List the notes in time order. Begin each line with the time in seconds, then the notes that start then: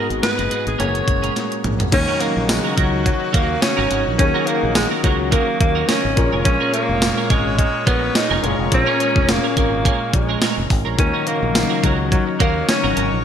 Already playing: G#2 B2 G#3 B3 D#4 F#4 G#4
0.10 G#1, closed hi-hat
0.22 B4, muted clean electric guitar stroke, snare, closed hi-hat
0.37 F#1 B3 F#4 G#4, closed hi-hat
0.50 B3 F#4 G#4, closed hi-hat
0.66 G#1 G#4, muted clean electric guitar stroke, closed hi-hat
0.78 F#1 A#2 A#3 C#4 F#4 G#4 C#5, closed hi-hat
0.94 muted clean electric guitar stroke, closed hi-hat
1.07 F#1, muted clean electric guitar stroke, kick, closed hi-hat
1.22 A#3 C#4 G#4, closed hi-hat
1.35 muted clean electric guitar stroke, snare, closed hi-hat
1.51 muted clean electric guitar stroke, closed hi-hat
1.64 A#1, closed hi-hat, mid tom
1.79 muted clean electric guitar stroke, closed hi-hat, floor tom
1.91 D#2 C#3 D#3 F#3 A#3 C#4 D#4 F#4 A#4 C#5, muted clean electric guitar stroke, kick, closed hi-hat, crash
2.08 C#4 F#4 A#4
2.20 A#3 C#4 F#4 A#4, closed hi-hat
2.36 A#1, muted clean electric guitar stroke
2.49 G#3 G#4, muted clean electric guitar stroke, snare, closed hi-hat, tambourine
2.64 C#4 F#4 A#4
2.76 C#2 F#3 C#4 F#4 A#4, kick, closed hi-hat
2.92 muted clean electric guitar stroke
3.05 F#3 F#4, muted clean electric guitar stroke, kick, closed hi-hat
3.20 muted clean electric guitar stroke
3.33 D#2 A#3 C#4 F#4 A#4, kick, closed hi-hat
3.49 muted clean electric guitar stroke
3.62 C#4 C#5, muted clean electric guitar stroke, snare, closed hi-hat, tambourine
3.77 G#1 C#4 F#4 A#4
3.90 G#1 C#4 F#4 A#4, closed hi-hat
4.06 A#1, muted clean electric guitar stroke
4.18 D#2 D#3 A#3 C#4 D#4 F#4 G#4 C#5, muted clean electric guitar stroke, kick, closed hi-hat
4.34 C#4 F#4 A#4
4.46 A#3 C#4 F#4 A#4, closed hi-hat
4.63 A#1, muted clean electric guitar stroke
4.75 G#3 G#4, muted clean electric guitar stroke, snare, closed hi-hat, tambourine
4.91 C#4 F#4 A#4
5.03 C#2 F#3 C#4 F#4 A#4, kick, closed hi-hat
5.19 muted clean electric guitar stroke
5.31 A#3 C#4 F#4 A#4, kick, closed hi-hat
5.47 muted clean electric guitar stroke
5.59 D#2 A#3 A#4, muted clean electric guitar stroke, kick, closed hi-hat
5.75 C#4 F#4 A#4
5.87 C#4 F#4 A#4 C#5, snare, closed hi-hat, tambourine
6.04 G#1, muted clean electric guitar stroke
6.16 A#1 A#2 G#3 A#3 C#4 F4 G#4 A#4 C#5, muted clean electric guitar stroke, kick, closed hi-hat
6.32 F1 C#4 G#4 A#4
6.44 A#1 C#4 C#5, muted clean electric guitar stroke, kick, closed hi-hat
6.60 C#4 G#4 A#4
6.72 A#3 C#4 G#4 A#4, closed hi-hat
6.89 F1, muted clean electric guitar stroke
7.02 muted clean electric guitar stroke, snare, closed hi-hat, tambourine
7.17 C#4 G#4 A#4
7.29 G#1 G#3 C#4 G#4 A#4, kick, closed hi-hat
7.46 muted clean electric guitar stroke
7.57 G#3 G#4, muted clean electric guitar stroke, kick, closed hi-hat
7.74 muted clean electric guitar stroke
7.85 A#1 B3 C#4 G#4 A#4 B4, kick, closed hi-hat
8.02 muted clean electric guitar stroke
8.14 D#4 D#5, muted clean electric guitar stroke, snare, closed hi-hat, tambourine
8.30 F1 C#4 G#4 A#4
8.42 F#1 A#2 A#3 C#4 F4 G#4 A#4, closed hi-hat
8.59 F1, muted clean electric guitar stroke
8.71 A#1 C#4 C#5, muted clean electric guitar stroke, kick, closed hi-hat
8.86 C#4 G#4 A#4
9.00 C#4 G#4 A#4, closed hi-hat
9.16 F1, muted clean electric guitar stroke, kick
9.28 A#3 A#4, muted clean electric guitar stroke, snare, closed hi-hat, tambourine
9.43 C#4 G#4 A#4
9.56 G#1 A#3 C#4 G#4 A#4, kick, closed hi-hat
9.85 C#4 G#4 A#4, kick, closed hi-hat
10.00 muted clean electric guitar stroke
10.13 A#1 G#3 G#4, muted clean electric guitar stroke, kick, closed hi-hat
10.29 C#4 G#4 A#4
10.41 C#4 G#4 A#4, snare, closed hi-hat, tambourine
10.57 F1, muted clean electric guitar stroke
10.70 G#1, muted clean electric guitar stroke, kick, open hi-hat
10.85 A#1 C#4 G#4 A#4
10.97 D#2 C#3 D#3 F#3 A#3 C#4 D#4 F4 A#4 C#5, muted clean electric guitar stroke, kick, closed hi-hat
11.06 F#4
11.14 C#4 F#4 A#4
11.26 A#3 C#4 F#4 A#4, closed hi-hat
11.42 A#1, muted clean electric guitar stroke
11.54 muted clean electric guitar stroke, snare, closed hi-hat, tambourine
11.69 C#4 F#4 A#4
11.82 C#2 F#3 C#4 F#4 A#4, kick, closed hi-hat
11.98 muted clean electric guitar stroke
12.11 F#3 F#4 A#4 C#5, muted clean electric guitar stroke, kick, closed hi-hat
12.27 muted clean electric guitar stroke
12.39 D#2 A#3 C#4 F#4 A#4, kick, closed hi-hat
12.55 muted clean electric guitar stroke
12.68 C#4 C#5, muted clean electric guitar stroke, snare, closed hi-hat, tambourine
12.83 G#1 C#4 F#4 A#4
12.96 G#1 C#4 F#4 A#4, closed hi-hat
13.12 A#1, muted clean electric guitar stroke